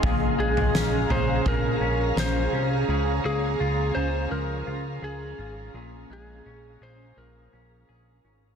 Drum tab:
SD |----o-------o---|----------------|----------------|
FT |o--o--o-o-------|----------------|----------------|
BD |o-------o-------|----------------|----------------|